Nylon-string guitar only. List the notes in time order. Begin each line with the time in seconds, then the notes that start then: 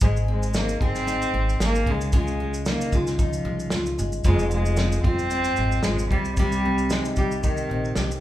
0.02 G#2 G#4
0.28 C4
0.55 D#4
0.82 G#4
1.07 D#4
1.34 C4
1.61 G#4
1.87 C#3
2.13 C#3 F4
2.40 G#3
2.66 D#4
2.93 F4
3.19 D#4
3.45 G#3
3.72 F4
3.99 G#3
4.25 F2 F4
4.51 G#3
4.78 C4
5.04 F4
5.32 C4
5.58 G#3
5.85 F4
6.11 C3
6.39 C3 G4
6.65 C4
6.92 D#4
7.18 G4
7.44 D#4
7.71 C4
7.97 G4